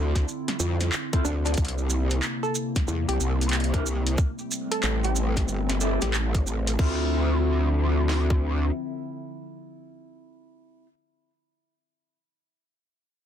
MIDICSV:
0, 0, Header, 1, 6, 480
1, 0, Start_track
1, 0, Key_signature, -1, "minor"
1, 0, Tempo, 652174
1, 1159, Time_signature, 4, 2, 24, 8
1, 9754, End_track
2, 0, Start_track
2, 0, Title_t, "Synth pluck"
2, 0, Program_c, 0, 84
2, 0, Note_on_c, 0, 62, 91
2, 352, Note_off_c, 0, 62, 0
2, 917, Note_on_c, 0, 62, 91
2, 1016, Note_off_c, 0, 62, 0
2, 1070, Note_on_c, 0, 62, 75
2, 1127, Note_off_c, 0, 62, 0
2, 1789, Note_on_c, 0, 69, 89
2, 1904, Note_off_c, 0, 69, 0
2, 2271, Note_on_c, 0, 67, 90
2, 2385, Note_off_c, 0, 67, 0
2, 3470, Note_on_c, 0, 69, 91
2, 3527, Note_off_c, 0, 69, 0
2, 3561, Note_on_c, 0, 69, 77
2, 3658, Note_off_c, 0, 69, 0
2, 3712, Note_on_c, 0, 67, 90
2, 3825, Note_off_c, 0, 67, 0
2, 4430, Note_on_c, 0, 67, 93
2, 4998, Note_off_c, 0, 67, 0
2, 9754, End_track
3, 0, Start_track
3, 0, Title_t, "Clean electric guitar"
3, 0, Program_c, 1, 27
3, 830, Note_on_c, 1, 60, 96
3, 831, Note_on_c, 1, 65, 85
3, 836, Note_on_c, 1, 69, 107
3, 839, Note_on_c, 1, 64, 86
3, 900, Note_off_c, 1, 60, 0
3, 900, Note_off_c, 1, 64, 0
3, 900, Note_off_c, 1, 65, 0
3, 900, Note_off_c, 1, 69, 0
3, 2747, Note_on_c, 1, 62, 93
3, 2749, Note_on_c, 1, 67, 89
3, 2751, Note_on_c, 1, 70, 104
3, 2754, Note_on_c, 1, 64, 86
3, 2819, Note_off_c, 1, 62, 0
3, 2819, Note_off_c, 1, 64, 0
3, 2819, Note_off_c, 1, 67, 0
3, 2819, Note_off_c, 1, 70, 0
3, 4275, Note_on_c, 1, 60, 81
3, 4277, Note_on_c, 1, 67, 77
3, 4279, Note_on_c, 1, 69, 88
3, 4280, Note_on_c, 1, 64, 75
3, 4408, Note_off_c, 1, 60, 0
3, 4408, Note_off_c, 1, 64, 0
3, 4408, Note_off_c, 1, 67, 0
3, 4408, Note_off_c, 1, 69, 0
3, 4994, Note_on_c, 1, 60, 85
3, 4997, Note_on_c, 1, 65, 79
3, 5000, Note_on_c, 1, 69, 96
3, 5003, Note_on_c, 1, 64, 77
3, 7992, Note_off_c, 1, 60, 0
3, 7992, Note_off_c, 1, 64, 0
3, 7992, Note_off_c, 1, 65, 0
3, 7992, Note_off_c, 1, 69, 0
3, 9754, End_track
4, 0, Start_track
4, 0, Title_t, "Ambient pad"
4, 0, Program_c, 2, 92
4, 0, Note_on_c, 2, 50, 85
4, 0, Note_on_c, 2, 60, 76
4, 0, Note_on_c, 2, 64, 97
4, 0, Note_on_c, 2, 65, 95
4, 1130, Note_off_c, 2, 50, 0
4, 1130, Note_off_c, 2, 60, 0
4, 1130, Note_off_c, 2, 65, 0
4, 1162, Note_on_c, 2, 48, 87
4, 1163, Note_on_c, 2, 58, 80
4, 3048, Note_off_c, 2, 64, 0
4, 3061, Note_off_c, 2, 48, 0
4, 3062, Note_off_c, 2, 58, 0
4, 3076, Note_on_c, 2, 60, 97
4, 3077, Note_on_c, 2, 55, 86
4, 3077, Note_on_c, 2, 57, 81
4, 4978, Note_off_c, 2, 60, 0
4, 4979, Note_off_c, 2, 55, 0
4, 4979, Note_off_c, 2, 57, 0
4, 4993, Note_on_c, 2, 53, 96
4, 4993, Note_on_c, 2, 76, 78
4, 4994, Note_on_c, 2, 60, 80
4, 4995, Note_on_c, 2, 50, 83
4, 7475, Note_off_c, 2, 53, 0
4, 7475, Note_off_c, 2, 76, 0
4, 7476, Note_off_c, 2, 50, 0
4, 7476, Note_off_c, 2, 60, 0
4, 9754, End_track
5, 0, Start_track
5, 0, Title_t, "Wobble bass"
5, 0, Program_c, 3, 39
5, 0, Note_on_c, 3, 38, 100
5, 186, Note_off_c, 3, 38, 0
5, 439, Note_on_c, 3, 41, 101
5, 665, Note_off_c, 3, 41, 0
5, 919, Note_on_c, 3, 38, 103
5, 1145, Note_off_c, 3, 38, 0
5, 1159, Note_on_c, 3, 36, 98
5, 1625, Note_off_c, 3, 36, 0
5, 2119, Note_on_c, 3, 40, 97
5, 2248, Note_off_c, 3, 40, 0
5, 2270, Note_on_c, 3, 36, 103
5, 2344, Note_off_c, 3, 36, 0
5, 2356, Note_on_c, 3, 36, 102
5, 3064, Note_off_c, 3, 36, 0
5, 3557, Note_on_c, 3, 33, 101
5, 4024, Note_off_c, 3, 33, 0
5, 4035, Note_on_c, 3, 31, 98
5, 4405, Note_off_c, 3, 31, 0
5, 4430, Note_on_c, 3, 33, 102
5, 4744, Note_off_c, 3, 33, 0
5, 4756, Note_on_c, 3, 33, 101
5, 4984, Note_off_c, 3, 33, 0
5, 4997, Note_on_c, 3, 38, 98
5, 6409, Note_off_c, 3, 38, 0
5, 9754, End_track
6, 0, Start_track
6, 0, Title_t, "Drums"
6, 113, Note_on_c, 9, 36, 61
6, 115, Note_on_c, 9, 40, 40
6, 115, Note_on_c, 9, 42, 65
6, 119, Note_on_c, 9, 70, 37
6, 187, Note_off_c, 9, 36, 0
6, 188, Note_off_c, 9, 40, 0
6, 188, Note_off_c, 9, 42, 0
6, 193, Note_off_c, 9, 70, 0
6, 209, Note_on_c, 9, 70, 52
6, 283, Note_off_c, 9, 70, 0
6, 355, Note_on_c, 9, 40, 53
6, 355, Note_on_c, 9, 42, 50
6, 357, Note_on_c, 9, 70, 27
6, 428, Note_off_c, 9, 40, 0
6, 428, Note_off_c, 9, 42, 0
6, 431, Note_off_c, 9, 70, 0
6, 439, Note_on_c, 9, 70, 95
6, 513, Note_off_c, 9, 70, 0
6, 593, Note_on_c, 9, 40, 41
6, 593, Note_on_c, 9, 42, 67
6, 593, Note_on_c, 9, 70, 43
6, 667, Note_off_c, 9, 40, 0
6, 667, Note_off_c, 9, 42, 0
6, 667, Note_off_c, 9, 70, 0
6, 681, Note_on_c, 9, 39, 117
6, 682, Note_on_c, 9, 70, 54
6, 754, Note_off_c, 9, 39, 0
6, 756, Note_off_c, 9, 70, 0
6, 833, Note_on_c, 9, 36, 100
6, 833, Note_on_c, 9, 42, 52
6, 833, Note_on_c, 9, 70, 24
6, 906, Note_off_c, 9, 42, 0
6, 906, Note_off_c, 9, 70, 0
6, 907, Note_off_c, 9, 36, 0
6, 921, Note_on_c, 9, 70, 95
6, 994, Note_off_c, 9, 70, 0
6, 1070, Note_on_c, 9, 70, 39
6, 1073, Note_on_c, 9, 42, 29
6, 1081, Note_off_c, 9, 42, 0
6, 1081, Note_on_c, 9, 42, 34
6, 1133, Note_off_c, 9, 42, 0
6, 1133, Note_on_c, 9, 42, 40
6, 1144, Note_off_c, 9, 70, 0
6, 1156, Note_on_c, 9, 70, 47
6, 1160, Note_on_c, 9, 36, 116
6, 1162, Note_off_c, 9, 42, 0
6, 1162, Note_on_c, 9, 42, 46
6, 1212, Note_off_c, 9, 42, 0
6, 1212, Note_on_c, 9, 42, 51
6, 1230, Note_off_c, 9, 70, 0
6, 1233, Note_off_c, 9, 36, 0
6, 1240, Note_off_c, 9, 42, 0
6, 1240, Note_on_c, 9, 42, 56
6, 1311, Note_on_c, 9, 70, 27
6, 1313, Note_off_c, 9, 42, 0
6, 1384, Note_off_c, 9, 70, 0
6, 1397, Note_on_c, 9, 70, 84
6, 1471, Note_off_c, 9, 70, 0
6, 1548, Note_on_c, 9, 70, 36
6, 1552, Note_on_c, 9, 42, 66
6, 1622, Note_off_c, 9, 70, 0
6, 1626, Note_off_c, 9, 42, 0
6, 1638, Note_on_c, 9, 70, 53
6, 1639, Note_on_c, 9, 39, 111
6, 1711, Note_off_c, 9, 70, 0
6, 1713, Note_off_c, 9, 39, 0
6, 1794, Note_on_c, 9, 70, 23
6, 1867, Note_off_c, 9, 70, 0
6, 1876, Note_on_c, 9, 70, 83
6, 1950, Note_off_c, 9, 70, 0
6, 2029, Note_on_c, 9, 70, 38
6, 2032, Note_on_c, 9, 36, 60
6, 2032, Note_on_c, 9, 40, 42
6, 2032, Note_on_c, 9, 42, 67
6, 2103, Note_off_c, 9, 70, 0
6, 2105, Note_off_c, 9, 36, 0
6, 2105, Note_off_c, 9, 40, 0
6, 2105, Note_off_c, 9, 42, 0
6, 2118, Note_on_c, 9, 70, 57
6, 2191, Note_off_c, 9, 70, 0
6, 2272, Note_on_c, 9, 70, 24
6, 2273, Note_on_c, 9, 42, 50
6, 2346, Note_off_c, 9, 42, 0
6, 2346, Note_off_c, 9, 70, 0
6, 2358, Note_on_c, 9, 70, 86
6, 2432, Note_off_c, 9, 70, 0
6, 2512, Note_on_c, 9, 42, 31
6, 2516, Note_on_c, 9, 70, 39
6, 2520, Note_off_c, 9, 42, 0
6, 2520, Note_on_c, 9, 42, 37
6, 2569, Note_off_c, 9, 42, 0
6, 2569, Note_on_c, 9, 42, 42
6, 2589, Note_off_c, 9, 70, 0
6, 2598, Note_on_c, 9, 70, 49
6, 2599, Note_off_c, 9, 42, 0
6, 2599, Note_on_c, 9, 39, 114
6, 2599, Note_on_c, 9, 42, 46
6, 2650, Note_off_c, 9, 42, 0
6, 2650, Note_on_c, 9, 42, 50
6, 2672, Note_off_c, 9, 70, 0
6, 2673, Note_off_c, 9, 39, 0
6, 2679, Note_off_c, 9, 42, 0
6, 2679, Note_on_c, 9, 42, 57
6, 2751, Note_on_c, 9, 36, 102
6, 2752, Note_off_c, 9, 42, 0
6, 2752, Note_on_c, 9, 42, 53
6, 2754, Note_on_c, 9, 70, 24
6, 2824, Note_off_c, 9, 36, 0
6, 2826, Note_off_c, 9, 42, 0
6, 2827, Note_off_c, 9, 70, 0
6, 2843, Note_on_c, 9, 70, 94
6, 2916, Note_off_c, 9, 70, 0
6, 2992, Note_on_c, 9, 42, 68
6, 2996, Note_on_c, 9, 70, 38
6, 3066, Note_off_c, 9, 42, 0
6, 3069, Note_off_c, 9, 70, 0
6, 3074, Note_on_c, 9, 70, 48
6, 3077, Note_on_c, 9, 36, 120
6, 3147, Note_off_c, 9, 70, 0
6, 3151, Note_off_c, 9, 36, 0
6, 3229, Note_on_c, 9, 70, 27
6, 3302, Note_off_c, 9, 70, 0
6, 3322, Note_on_c, 9, 70, 91
6, 3395, Note_off_c, 9, 70, 0
6, 3471, Note_on_c, 9, 42, 70
6, 3473, Note_on_c, 9, 70, 37
6, 3545, Note_off_c, 9, 42, 0
6, 3547, Note_off_c, 9, 70, 0
6, 3553, Note_on_c, 9, 70, 49
6, 3558, Note_on_c, 9, 39, 116
6, 3627, Note_off_c, 9, 70, 0
6, 3632, Note_off_c, 9, 39, 0
6, 3706, Note_on_c, 9, 70, 25
6, 3713, Note_on_c, 9, 42, 38
6, 3780, Note_off_c, 9, 70, 0
6, 3787, Note_off_c, 9, 42, 0
6, 3796, Note_on_c, 9, 70, 98
6, 3869, Note_off_c, 9, 70, 0
6, 3949, Note_on_c, 9, 70, 43
6, 3950, Note_on_c, 9, 36, 61
6, 3952, Note_on_c, 9, 40, 43
6, 3952, Note_on_c, 9, 42, 71
6, 4023, Note_off_c, 9, 70, 0
6, 4024, Note_off_c, 9, 36, 0
6, 4026, Note_off_c, 9, 40, 0
6, 4026, Note_off_c, 9, 42, 0
6, 4035, Note_on_c, 9, 70, 52
6, 4108, Note_off_c, 9, 70, 0
6, 4191, Note_on_c, 9, 40, 56
6, 4191, Note_on_c, 9, 42, 54
6, 4191, Note_on_c, 9, 70, 28
6, 4265, Note_off_c, 9, 40, 0
6, 4265, Note_off_c, 9, 42, 0
6, 4265, Note_off_c, 9, 70, 0
6, 4274, Note_on_c, 9, 70, 94
6, 4347, Note_off_c, 9, 70, 0
6, 4427, Note_on_c, 9, 70, 40
6, 4431, Note_on_c, 9, 40, 44
6, 4431, Note_on_c, 9, 42, 70
6, 4500, Note_off_c, 9, 70, 0
6, 4504, Note_off_c, 9, 40, 0
6, 4504, Note_off_c, 9, 42, 0
6, 4518, Note_on_c, 9, 39, 114
6, 4521, Note_on_c, 9, 70, 49
6, 4592, Note_off_c, 9, 39, 0
6, 4594, Note_off_c, 9, 70, 0
6, 4670, Note_on_c, 9, 36, 103
6, 4672, Note_on_c, 9, 42, 56
6, 4672, Note_on_c, 9, 70, 28
6, 4744, Note_off_c, 9, 36, 0
6, 4745, Note_off_c, 9, 42, 0
6, 4746, Note_off_c, 9, 70, 0
6, 4761, Note_on_c, 9, 70, 96
6, 4834, Note_off_c, 9, 70, 0
6, 4912, Note_on_c, 9, 42, 69
6, 4914, Note_on_c, 9, 70, 41
6, 4986, Note_off_c, 9, 42, 0
6, 4988, Note_off_c, 9, 70, 0
6, 4997, Note_on_c, 9, 36, 117
6, 4999, Note_on_c, 9, 49, 90
6, 5071, Note_off_c, 9, 36, 0
6, 5073, Note_off_c, 9, 49, 0
6, 5956, Note_on_c, 9, 38, 61
6, 6030, Note_off_c, 9, 38, 0
6, 6111, Note_on_c, 9, 36, 77
6, 6184, Note_off_c, 9, 36, 0
6, 9754, End_track
0, 0, End_of_file